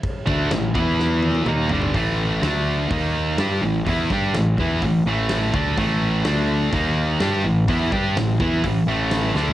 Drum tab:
CC |x---x-----------|----------------|----------------|----------------|
HH |----------------|o---o---o---o---|o---o---o---o---|o---o---o---o---|
SD |----o---o-------|----o-------o---|--o-o-------o---|----o-------o---|
T1 |----------oo----|----------------|----------------|----------------|
T2 |------------o---|----------------|----------------|----------------|
FT |--------------oo|----------------|----------------|----------------|
BD |o-o---o---------|o-------o-------|o-o---o-o-----o-|o-------o-------|

CC |----------------|
HH |o---o---o---o---|
SD |----o-------o-o-|
T1 |----------------|
T2 |----------------|
FT |---------------o|
BD |o-o---o-o-------|